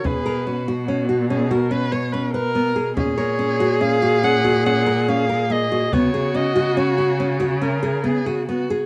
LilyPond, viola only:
\new Staff \with { instrumentName = "Viola" } { \time 7/4 \key ges \major \tempo 4 = 143 aes'4 fis'2 aes'8 bes'8 b'8 cis''8 b'8 bes'4. | aes'1.~ aes'4 | ges'1 bes'4 aes'8 ges'8 ges'4 | }